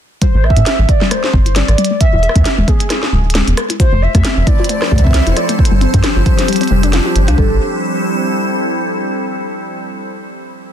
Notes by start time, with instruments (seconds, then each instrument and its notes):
0.22 synth pluck G3, soft synth lead C5, kick, closed hi-hat
0.34 analog synth bass A1, synth pluck A3
0.44 soft synth lead E5, cross-stick
0.50 kick
0.56 analog synth bass A2, synth pluck C4, closed hi-hat
0.66 synth pluck E4, snare, closed hi-hat
0.79 analog synth bass A1, synth pluck G3
0.89 soft synth lead D5, kick, closed hi-hat
1.01 synth pluck G3, snare
1.11 synth pluck A3, soft synth lead C5, cross-stick, closed hi-hat
1.24 snare
1.33 analog synth bass G1, synth pluck C4, kick
1.46 synth pluck E4, closed hi-hat
1.56 synth pluck G3, soft synth lead D5, snare, closed hi-hat
1.68 analog synth bass A1, cross-stick, closed hi-hat
1.78 synth pluck G3, closed hi-hat
1.85 closed hi-hat
1.91 synth pluck A3
2.00 soft synth lead E5, kick, closed hi-hat
2.13 analog synth bass E1, synth pluck E4
2.23 synth pluck G#4, closed hi-hat
2.29 cross-stick
2.36 analog synth bass E2, synth pluck G#3, kick, closed hi-hat
2.45 snare, closed hi-hat
2.58 analog synth bass E1, synth pluck G#3
2.68 synth pluck B3, soft synth lead G#4, kick, closed hi-hat
2.80 closed hi-hat
2.90 synth pluck E4, cross-stick, snare, closed hi-hat
3.03 synth pluck G#4, snare
3.13 analog synth bass D1, synth pluck G#3
3.30 closed hi-hat
3.35 synth pluck G#3, snare, closed hi-hat
3.48 analog synth bass E1, synth pluck B3, closed hi-hat
3.57 cross-stick, closed hi-hat
3.70 synth pluck E4, closed hi-hat
3.80 ambient pad F3, synth pluck F4, soft synth lead C5, synth texture C5, kick, closed hi-hat
3.92 analog synth bass F1, synth pluck A3
4.00 ambient pad E4, soft synth lead E5
4.10 ambient pad C4
4.15 analog synth bass F2, synth pluck A3, kick, cross-stick, closed hi-hat
4.25 synth pluck C4, snare, closed hi-hat
4.37 analog synth bass F1, soft synth lead E5
4.47 synth pluck E4, soft synth lead D5, kick, closed hi-hat
4.53 ambient pad A4
4.60 synth pluck F4, ambient pad C5
4.64 closed hi-hat
4.69 synth pluck A3, closed hi-hat
4.82 cross-stick, snare
4.92 analog synth bass C2, synth pluck A3, kick
4.96 kick, closed hi-hat
4.99 kick
5.04 synth pluck C4, soft synth lead E5, kick
5.07 kick
5.11 kick, snare, closed hi-hat
5.27 analog synth bass F1, synth pluck E4, closed hi-hat
5.36 synth pluck F4, soft synth lead D5, cross-stick, closed hi-hat
5.49 synth pluck A3, closed hi-hat
5.59 soft synth lead C5, kick
5.65 closed hi-hat
5.71 analog synth bass G1, synth pluck G3, ambient pad G4
5.81 synth pluck C4, closed hi-hat
5.94 analog synth bass G2, kick, closed hi-hat
6.04 synth pluck D4, cross-stick, snare, closed hi-hat
6.16 analog synth bass G1, ambient pad D4, synth pluck F4
6.26 synth pluck G3, kick, closed hi-hat
6.39 snare, closed hi-hat
6.48 synth pluck G3, closed hi-hat
6.53 closed hi-hat
6.56 closed hi-hat
6.61 synth pluck C4, closed hi-hat
6.63 closed hi-hat
6.71 analog synth bass F1, synth pluck G3
6.83 synth pluck D4, closed hi-hat
6.93 synth pluck F4, snare, closed hi-hat
7.06 synth pluck F4
7.16 analog synth bass G1, closed hi-hat
7.28 analog synth bass C2, synth pluck D4, cross-stick, closed hi-hat
7.38 analog synth bass A1, ambient pad G3, synth pluck G3, soft synth lead A4, kick
7.45 ambient pad C4
7.53 ambient pad E4
7.59 ambient pad A4
7.65 ambient pad C5